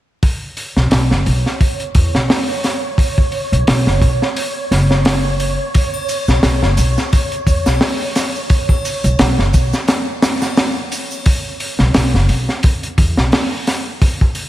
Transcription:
0.23 C#5, kick, open hi-hat
0.57 open hi-hat
0.77 B1, snare
0.91 B1, snare, open hi-hat
1.11 F#1, snare
1.26 B1, open hi-hat
1.46 snare
1.61 kick, open hi-hat
1.80 closed hi-hat
1.95 E2, kick, open hi-hat
2.15 B1, snare
2.30 snare, open hi-hat
2.64 snare, open hi-hat
2.98 kick, open hi-hat
3.18 kick
3.32 open hi-hat
3.52 B1, closed hi-hat
3.67 B1, snare, open hi-hat
3.87 F#1, snare
4.01 B1, kick, open hi-hat
4.22 snare
4.36 open hi-hat
4.71 F#1, snare, open hi-hat
4.91 snare
5.05 snare, open hi-hat
5.40 open hi-hat
5.74 kick, open hi-hat, shaker
5.94 triangle
6.09 open hi-hat, shaker
6.28 B1, snare, shaker
6.43 B1, snare, open hi-hat, shaker
6.63 F#1, snare
6.77 B1, open hi-hat, shaker
6.98 snare, shaker
7.13 kick, open hi-hat, shaker
7.32 closed hi-hat
7.47 E2, kick, open hi-hat, shaker
7.66 B1, snare, triangle, shaker
7.81 snare, open hi-hat, shaker
8.15 snare, open hi-hat, shaker
8.36 shaker
8.50 kick, open hi-hat, shaker
8.69 kick, triangle
8.85 open hi-hat, shaker
9.04 B1, closed hi-hat, shaker
9.19 B1, snare, open hi-hat, shaker
9.38 F#1, snare
9.54 B1, kick, open hi-hat, shaker
9.73 snare, shaker
9.88 snare, open hi-hat, shaker
10.22 snare, open hi-hat, shaker
10.42 snare, triangle, shaker
10.57 snare, open hi-hat, shaker
10.92 open hi-hat, shaker
11.11 triangle, shaker
11.26 kick, open hi-hat
11.60 open hi-hat
11.79 B1, snare
11.94 B1, snare, open hi-hat
12.14 F#1, snare
12.29 B1, open hi-hat
12.49 snare
12.63 kick, open hi-hat
12.83 closed hi-hat
12.98 E2, kick, open hi-hat
13.17 B1, snare
13.32 snare, open hi-hat
13.67 snare, open hi-hat
14.02 kick, open hi-hat
14.21 kick
14.35 open hi-hat

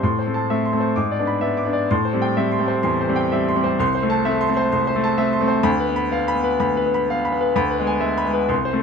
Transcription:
0.03 A2 C6
0.19 C5
0.27 A3 C4
0.34 A5
0.50 A3 C4 E5
0.65 C6
0.73 A3 C4
0.80 C5
0.96 G#2 D6
1.11 D5
1.19 B3 D4
1.27 B5
1.41 B3 D4 E5
1.57 D6
1.65 B3 D4
1.73 D5
1.91 A2 C6
2.05 C5
2.13 G3 C4
2.22 G5
2.36 G3 C4 E5
2.52 C6
2.59 G3 C4
2.68 C5
2.83 E2 C6
3.01 C5
3.09 G3 C4
3.16 G5
3.32 G3 C4 E5
3.49 C6
3.56 G3 C4
3.64 C5
3.79 C2 C6
3.95 C5
4.03 A3 C4
4.10 A5
4.25 A3 C4 E5
4.41 C6
4.49 A3 C4
4.57 C5
4.72 C2 C6
4.87 C5
4.96 A3 C4
5.04 A5
5.17 A3 C4 E5
5.33 C6
5.41 A3 C4
5.48 C5
5.63 D2 B5
5.80 B4
5.89 B3
5.96 B5
6.12 B3 F5
6.28 B5
6.35 B3
6.44 B4
6.60 D2 B5
6.77 B4
6.86 B3
6.94 B5
7.10 B3 F5
7.25 B5
7.32 B3
7.41 B4
7.56 D2 B5
7.71 B4
7.79 G#3 B3
7.87 G#5
8.00 G#3 B3 E5
8.18 B5
8.25 G#3 B3
8.33 B4
8.49 C2 C6
8.65 C5
8.73 A3 C4

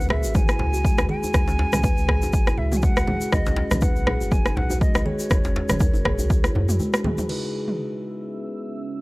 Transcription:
0.00 C#2, shaker
0.09 G#4 E5, cross-stick, low conga
0.24 G#1 F#4, shaker
0.35 G#5, kick, mid tom, djembe tone, high conga, shaker
0.49 E4, cross-stick, shaker
0.59 C#2, djembe slap, djembe tone, low conga
0.74 F#4, shaker
0.85 G#3, kick, shaker
0.98 C#2, cross-stick, djembe tone, shaker
1.09 G#4 G#5, high conga
1.23 F#4, djembe tone, shaker
1.34 C#2, kick, cross-stick, djembe bass, shaker
1.48 C#4, djembe slap, high conga, shaker
1.59 djembe slap, djembe tone
1.73 C#2 C#4, cross-stick, mid tom, high conga, low conga, shaker
1.83 B4, kick, djembe tone, djembe bass, shaker
1.97 C#2, shaker
2.08 G#4, kick, cross-stick, low conga
2.22 G#1 F#4, djembe tone, shaker
2.33 kick, shaker
2.47 E4, cross-stick, djembe tone, shaker
2.58 C#2 E5, low conga
2.72 F#4, mid tom, high conga, shaker
2.77 G#5
2.82 G#3 F#5, kick, djembe tone, shaker
2.97 C#2, cross-stick, shaker
3.07 G#4, mid tom, djembe tone, high conga, low conga
3.21 F#4, shaker
3.32 B1 D#5, kick, cross-stick, djembe bass, shaker
3.46 C#4, djembe slap, djembe tone, high conga, shaker
3.56 djembe slap
3.71 B1 C#4, cross-stick, mid tom, djembe tone, high conga, low conga, shaker
3.81 B4 F#5, kick, djembe bass, shaker
3.96 B1, shaker
4.07 G#4, cross-stick, djembe tone, low conga
4.21 F#1 F#4, shaker
4.31 G#5, kick, mid tom, djembe tone, high conga, shaker
4.45 D#4, cross-stick, shaker
4.56 B1 F#5, djembe slap, low conga
4.70 F#4, djembe tone, shaker
4.81 G#3 D#5, kick, shaker
4.95 B1, cross-stick, djembe tone, shaker
5.06 G#4 C#5, high conga
5.19 F#4, shaker
5.30 F#1, kick, cross-stick, djembe tone, djembe bass, shaker
5.44 C#4, djembe slap, high conga, shaker
5.56 djembe slap, djembe tone
5.69 F#1 C#4, cross-stick, mid tom, high conga, low conga, shaker
5.80 A#4, kick, djembe bass, shaker
5.94 F#1, djembe tone, shaker
6.05 G#4, kick, cross-stick, high conga, low conga
6.19 C#2 F#4, djembe tone, shaker
6.30 kick, shaker
6.44 E4, cross-stick, shaker
6.55 F#2, djembe tone, low conga
6.69 F#4, mid tom, shaker
6.80 G#3, djembe tone, shaker
6.94 cross-stick, high tom, shaker
7.04 G#4, mid tom, high conga, low conga
7.18 F#4, mid tom, djembe tone, shaker
7.29 C#3 C#4 D#4 E4 G#4 B4 E6, crash
7.68 mid tom

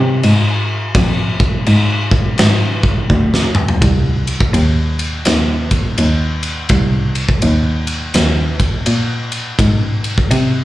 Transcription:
Already playing: C3
0.23 G#2, crash
0.95 F2, kick, crash
1.40 kick
1.66 G#2, crash
2.11 kick
2.38 G#2, snare, crash
2.83 kick
3.10 D2, kick
3.34 snare
3.55 mid tom
3.68 floor tom
3.82 C2, kick, ride
4.27 ride
4.40 kick
4.54 D#2, ride
4.99 ride
5.25 D#2, snare, ride
5.71 kick, ride
5.98 D#2, ride
6.43 ride
6.69 C2, kick, ride
7.15 ride
7.29 kick
7.42 D#2, ride
7.87 ride
8.14 D#2, snare, ride
8.60 kick, ride
8.86 A#2, ride
9.32 ride
9.59 G#2, kick, ride
10.04 ride
10.18 kick
10.31 C3, ride

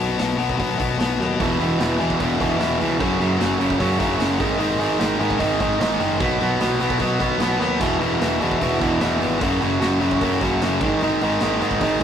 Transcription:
Already playing: B2
0.00 B1 F#3 B3
0.18 B1 B2 F#3 B3, snare, open hi-hat
0.37 B1 B2 F#3 B3, open hi-hat
0.50 kick
0.58 B2 F#3 B3, kick, open hi-hat
0.78 B1 B2 F#3 B3, kick, open hi-hat
0.98 B1 B2 F#3 B3, snare, open hi-hat
1.19 D#2 B2 F#3 B3, snare
1.40 E1 E2 B2 E3, kick, open hi-hat
1.59 E1 E2 B2 E3, open hi-hat
1.79 E1 E2 B2 E3, snare, open hi-hat
1.99 E2 B2 E3, open hi-hat
2.10 kick
2.19 E1 E2 B2 E3, kick, open hi-hat
2.39 E1 E2 B2 E3, kick, open hi-hat
2.58 E1 E2 B2 E3, snare, open hi-hat
2.80 C#2 E2 B2 E3, open hi-hat
2.98 F#1 F#2 C#3 F#3, kick, open hi-hat
3.19 F#1 F#2 C#3 F#3, open hi-hat
3.38 F#1 F#2 C#3 F#3, snare, open hi-hat
3.59 F#1 F#2 C#3 F#3, open hi-hat
3.70 kick
3.79 F#2 C#3 F#3, kick, open hi-hat
3.98 F#1 F#2 C#3 F#3, kick, open hi-hat
4.19 F#1 F#2 C#3 F#3, snare, open hi-hat
4.40 G#1 G#2 D#3 G#3, kick, open hi-hat
4.58 G#1 G#2 D#3 G#3, open hi-hat
4.79 G#1 G#2 D#3 G#3, open hi-hat
4.99 G#1 G#2 D#3 G#3, snare, open hi-hat
5.19 G#2 D#3 G#3, open hi-hat
5.30 kick
5.38 G#1 G#2 D#3 G#3, kick, open hi-hat
5.60 G#1 G#2 D#3 G#3, kick, open hi-hat
5.79 G#1 G#2 D#3 G#3, snare, open hi-hat
6.00 F#1 G#2 D#3 G#3, open hi-hat
6.20 B1 B2 F#3 B3, kick, open hi-hat
6.41 B1 B2 F#3 B3, open hi-hat
6.60 B1 B2 F#3 B3, snare, open hi-hat
6.80 B1 B2 F#3 B3, open hi-hat
6.90 kick
6.99 B2 F#3 B3, kick, open hi-hat
7.19 B1 B2 F#3 B3, kick, open hi-hat
7.39 B1 B2 F#3 B3, snare, open hi-hat
7.59 D#2 B2 F#3 B3, snare
7.79 E1 E2 B2 E3, kick, open hi-hat, splash
7.99 E1 E2 B2 E3, open hi-hat
8.20 E1 E2 B2 E3, snare, open hi-hat
8.41 E2 B2 E3, open hi-hat
8.51 kick
8.59 E1 E2 B2 E3, kick, open hi-hat
8.80 E1 E2 B2 E3, kick, open hi-hat
9.01 E1 E2 B2 E3, snare, open hi-hat
9.21 G#1 E2 B2 E3, open hi-hat
9.41 F#1 F#2 C#3 F#3, kick, open hi-hat
9.61 F#1 F#2 C#3 F#3, open hi-hat
9.80 F#1 F#2 C#3 F#3, snare, open hi-hat
10.00 F#1 F#2 C#3 F#3, open hi-hat
10.11 kick
10.21 F#2 C#3 F#3, kick, open hi-hat
10.41 F#1 F#2 C#3 F#3, kick, open hi-hat
10.62 F#1 F#2 C#3 F#3, snare, open hi-hat
10.81 G#1 G#2 D#3 G#3, kick, open hi-hat
11.01 G#1 G#2 D#3 G#3, open hi-hat
11.21 G#1 G#2 D#3 G#3, open hi-hat
11.40 G#1 G#2 D#3 G#3, snare, open hi-hat
11.61 G#2 D#3 G#3, open hi-hat
11.71 kick
11.81 G#1 G#2 D#3 G#3, kick, open hi-hat
12.00 G#2 D#3

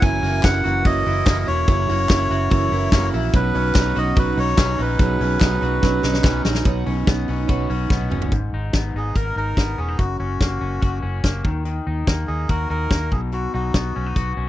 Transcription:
Already playing: E4 F#4
0.02 F#1 F#2 C#3 E3 A#3 C#4 E4 F#4 A#4 G#5, kick, hi-hat pedal, open hi-hat
0.22 F#1 E3 A#3 C#4 E4 F#4 A#4, hi-hat pedal, open hi-hat
0.43 F#1 A#3 C#4 E4 F#4 A#4 F#5, kick, snare, clap, hi-hat pedal, open hi-hat
0.63 F#1 E3 A#3 C#4 E4 F#4 A#4, hi-hat pedal, open hi-hat
0.85 F#1 F#2 C#3 E3 A#3 C#4 E4 F#4 A#4 D#5, kick, hi-hat pedal, open hi-hat
1.06 F#1 E3 A#3 C#4 E4 F#4 A#4, hi-hat pedal, open hi-hat
1.26 F#1 A#3 C#4 E4 F#4 A#4, kick, snare, clap, hi-hat pedal, open hi-hat
1.39 D#5
1.46 E1 E3 A#3 C#4 E4 F#4 A#4 C#5, hi-hat pedal, open hi-hat
1.67 F#1 F#2 C#3 E3 A#3 C#4 E4 F#4 A#4, kick, hi-hat pedal, open hi-hat
1.89 F#1 E3 A#3 C#4 E4 F#4 A#4, hi-hat pedal, open hi-hat
2.09 F#1 E3 A#3 C#4 E4 F#4 A#4, kick, snare, clap, hi-hat pedal, open hi-hat
2.30 F#1 E3 A#3 C#4 E4 F#4 A#4, hi-hat pedal, open hi-hat
2.50 F#1 F#2 C#3 E3 A#3 C#4 E4 F#4 A#4, kick, hi-hat pedal, open hi-hat
2.70 F#1 E3 A#3 C#4 E4 F#4 A#4, hi-hat pedal, open hi-hat
2.91 F#1 E3 A#3 C#4 E4 F#4 A#4, kick, snare, clap, hi-hat pedal, open hi-hat
3.13 A#1 E3 A#3 C#4 E4 F#4 A#4, hi-hat pedal, open hi-hat
3.33 B1 B2 F#3 C#4 D#4 F#4 B4, kick, hi-hat pedal, open hi-hat
3.53 B1 C#4 D#4 F#4 B4, hi-hat pedal, open hi-hat
3.75 B1 F#3 C#4 D#4 F#4 B4, kick, snare, clap, hi-hat pedal, open hi-hat
3.95 B1 C#4 D#4 F#4 B4 D#5, hi-hat pedal, open hi-hat
4.16 B1 B2 F#3 C#4 D#4 F#4 B4, kick, hi-hat pedal, open hi-hat
4.36 B1 C#4 D#4 F#4 B4 C#5, hi-hat pedal, open hi-hat
4.57 B1 F#3 C#4 D#4 F#4 B4, kick, snare, clap, hi-hat pedal, open hi-hat
4.78 A#1 C#4 D#4 F#4 B4, hi-hat pedal, open hi-hat
4.99 B1 B2 F#3 C#4 D#4 F#4 G#4, kick, hi-hat pedal, open hi-hat
5.20 B1 C#4 D#4 F#4 B4, hi-hat pedal, open hi-hat
5.40 B1 F#3 C#4 D#4 F#4 B4, kick, snare, clap, hi-hat pedal, open hi-hat
5.61 B1 C#4 D#4 F#4 B4, hi-hat pedal, open hi-hat
5.82 B1 B2 F#3 C#4 D#4 F#4 B4, kick, snare
6.03 B1 C#4 D#4 F#4 B4, snare
6.14 snare
6.24 B1 F#3 C#4 D#4 F#4 B4, kick, snare, clap
6.45 A#1 C#4 D#4 F#4 B4, snare
6.55 snare
6.65 B1 B2 F#3 C#4 D#4 F#4 B4, kick, closed hi-hat
6.86 B1 C#4 D#4 F#4 B4, open hi-hat
7.06 B1 F#3 B3 C#4 D#4 F#4 B4, kick, snare, closed hi-hat
7.27 B1 C#4 D#4 F#4 B4, open hi-hat
7.47 B1 B2 F#3 C#4 D#4 F#4 B4, kick, closed hi-hat
7.69 B1 C#4 D#4 F#4 B4, open hi-hat
7.89 B1 F#3 B3 C#4 D#4 F#4 B4, kick, snare
8.01 high tom
8.10 F#1 C#4 D#4 F#4 B4, mid tom
8.22 floor tom
8.32 G#1 G#2, kick, closed hi-hat
8.53 G#1 D#4
8.73 G#1 B3, kick, snare, closed hi-hat
8.94 G#1 D#4 G#4
9.16 G#1 A#4, kick, closed hi-hat
9.36 G#1 D#4 A#4
9.57 G#1 B3, kick, snare, closed hi-hat
9.78 E1 C#4 G#4
9.89 D#4
9.98 F#1 F#2 F#4, kick, closed hi-hat
10.19 F#1 C#4 F#4
10.40 F#1 A#3, kick, snare, closed hi-hat
10.61 F#1 C#4
10.81 F#1 F#4, kick, closed hi-hat
11.02 F#1 C#4
11.24 F#1 A#3, kick, snare, closed hi-hat
11.45 D#2 D#3, kick
11.65 D#3, closed hi-hat
11.87 D#2 D#4
12.07 D#2 A#3, kick, snare, closed hi-hat
12.27 D#2 D#4 G#4
12.49 D#2 F#4 A#4, kick, closed hi-hat
12.70 D#2 D#4 A#4
12.91 D#2 A#3, kick, snare, closed hi-hat
13.12 B1 B2 G#4, kick
13.32 B2 F#4, closed hi-hat
13.54 B1 D#4 F#4
13.74 B1 B3, kick, snare, closed hi-hat
13.96 B1 C#4
14.06 D#4
14.16 B1 F#4, kick, closed hi-hat
14.37 B1 C#4

